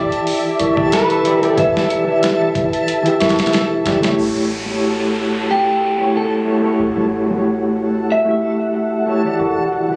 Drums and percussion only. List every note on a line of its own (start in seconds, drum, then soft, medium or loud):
0.12 closed hi-hat soft
0.27 open hi-hat medium
0.59 closed hi-hat medium
0.77 kick loud
0.92 snare loud
0.92 closed hi-hat medium
1.10 closed hi-hat soft
1.25 closed hi-hat medium
1.43 closed hi-hat soft
1.57 kick loud
1.57 closed hi-hat medium
1.77 snare medium
1.90 closed hi-hat medium
2.23 snare loud
2.23 closed hi-hat medium
2.55 kick medium
2.55 closed hi-hat medium
2.73 closed hi-hat soft
2.88 closed hi-hat medium
3.06 closed hi-hat soft
3.20 snare medium
3.20 closed hi-hat medium
3.29 snare medium
3.29 closed hi-hat medium
3.39 snare medium
3.39 closed hi-hat medium
3.46 snare medium
3.46 closed hi-hat medium
3.53 snare loud
3.53 closed hi-hat medium
3.86 snare loud
3.86 closed hi-hat medium
4.03 snare loud
4.03 closed hi-hat medium
4.18 closed hi-hat medium
4.51 closed hi-hat medium
4.83 closed hi-hat medium
5.16 closed hi-hat medium
5.33 closed hi-hat soft
5.48 open hi-hat medium
5.81 closed hi-hat medium
6.14 closed hi-hat medium
6.46 closed hi-hat medium
6.79 closed hi-hat medium
6.97 snare soft
7.12 closed hi-hat medium
7.31 snare soft
7.44 closed hi-hat medium
7.77 closed hi-hat medium
7.95 closed hi-hat soft
8.09 closed hi-hat medium
8.27 closed hi-hat soft
8.42 closed hi-hat medium
8.59 closed hi-hat soft
8.74 closed hi-hat medium
9.07 closed hi-hat medium
9.25 closed hi-hat soft
9.40 closed hi-hat medium
9.72 closed hi-hat medium